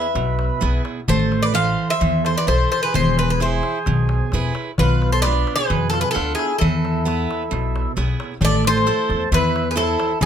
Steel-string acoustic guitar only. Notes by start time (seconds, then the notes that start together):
0.15 B2
0.61 B3 E4 G#4
1.08 A3
1.54 E3 A4 C5
2.01 E3
2.47 E4 A4 C5
2.94 E3
3.40 E4 G#4
3.87 B2
4.33 E4 G#4 B4
4.80 B2
5.25 B3 D4 F4
5.70 B2
6.14 B3 D4 F4
6.61 E3
7.05 B3 E4 B4
7.51 B2
7.97 B3 E4 G#4
8.42 A3
8.86 E4 A4 C5
9.32 E3
9.76 E4 A4 C5
10.21 E3